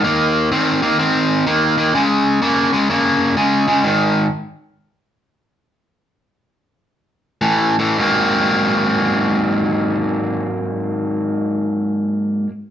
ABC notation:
X:1
M:4/4
L:1/8
Q:"Swing" 1/4=118
K:Abmix
V:1 name="Overdriven electric guitar" clef=bass
[E,B,]2 [E,C] [E,B,] [E,C]2 [E,B,] [E,B,] | [D,A,]2 [D,B,] [D,A,] [D,B,]2 [D,A,] [D,A,] | [A,,E,]2 z6 | z6 [=A,,=E,] [A,,E,] |
[A,,G,B,C]8- | [A,,G,B,C]8 |]